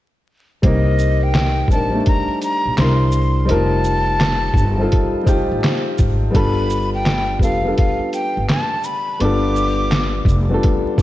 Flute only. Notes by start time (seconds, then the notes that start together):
0.64 D#5
1.23 G5
1.71 A5
2.07 A#5
2.43 A#5
2.79 C6
3.50 A5
6.35 B5
6.94 G5
7.43 F5
7.78 F5
8.14 G5
8.49 A5
8.85 B5
9.21 D6